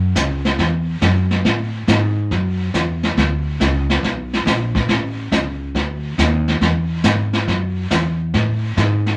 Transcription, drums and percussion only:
0.16 kick soft
0.16 snare medium
0.16 hi-hat pedal medium
0.45 snare soft
0.58 brush sweep medium
0.58 kick soft
0.58 snare soft
1.02 kick soft
1.02 snare medium
1.02 hi-hat pedal medium
1.31 snare soft
1.45 brush sweep medium
1.45 kick soft
1.45 snare soft
1.88 kick soft
1.88 snare medium
1.88 hi-hat pedal medium
2.31 brush sweep medium
2.31 kick soft
2.31 snare soft
2.74 kick soft
2.74 snare medium
2.74 hi-hat pedal medium
3.03 snare soft
3.17 brush sweep medium
3.17 kick soft
3.17 snare soft
3.60 kick soft
3.60 snare medium
3.60 hi-hat pedal medium
3.90 snare soft
4.03 brush sweep soft
4.03 kick soft
4.03 snare soft
4.33 snare medium
4.46 kick soft
4.46 snare medium
4.46 hi-hat pedal medium
4.75 kick medium
4.75 snare soft
4.89 brush sweep medium
4.89 kick soft
4.89 snare soft
5.32 kick soft
5.32 snare medium
5.32 hi-hat pedal medium
5.75 brush sweep soft
5.75 kick soft
5.75 snare soft
6.18 kick soft
6.18 snare medium
6.18 hi-hat pedal medium
6.48 snare soft
6.61 brush sweep soft
6.61 kick soft
6.61 snare medium
7.04 kick soft
7.04 snare medium
7.04 hi-hat pedal medium
7.33 snare soft
7.47 brush sweep medium
7.47 kick soft
7.47 snare soft
7.91 kick soft
7.91 snare medium
7.91 hi-hat pedal medium
8.34 brush sweep medium
8.34 kick soft
8.34 snare soft
8.77 kick soft
8.77 snare medium
8.77 hi-hat pedal medium
9.06 snare soft

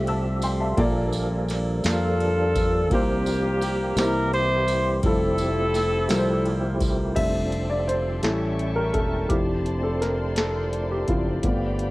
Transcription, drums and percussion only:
0.07 ride soft
0.42 ride medium
0.42 tambourine medium
0.78 kick loud
0.78 ride medium
1.13 ride soft
1.13 tambourine medium
1.49 snare soft
1.49 ride medium
1.49 tambourine soft
1.84 snare loud
1.84 ride medium
1.84 tambourine medium
2.21 ride soft
2.55 kick medium
2.55 ride medium
2.55 tambourine medium
2.91 kick loud
2.91 ride medium
3.26 ride soft
3.26 tambourine medium
3.62 ride medium
3.62 tambourine medium
3.97 snare loud
3.97 ride medium
3.97 tambourine medium
4.34 ride soft
4.68 ride medium
4.68 tambourine medium
5.03 kick loud
5.03 ride medium
5.38 ride soft
5.38 tambourine medium
5.74 snare soft
5.74 ride medium
5.74 tambourine soft
6.09 snare loud
6.09 ride medium
6.09 tambourine medium
6.45 ride soft
6.80 kick medium
6.80 ride medium
6.80 tambourine medium
7.16 kick medium
7.16 closed hi-hat medium
7.16 crash medium
7.52 closed hi-hat soft
7.89 closed hi-hat medium
8.23 snare medium
8.23 closed hi-hat medium
8.59 closed hi-hat soft
8.94 kick medium
8.94 closed hi-hat medium
9.30 kick medium
9.30 closed hi-hat medium
9.66 closed hi-hat soft
10.02 snare soft
10.02 closed hi-hat medium
10.36 snare medium
10.36 closed hi-hat medium
10.73 closed hi-hat soft
11.08 kick medium
11.08 closed hi-hat medium
11.43 kick medium
11.43 closed hi-hat medium
11.79 closed hi-hat soft

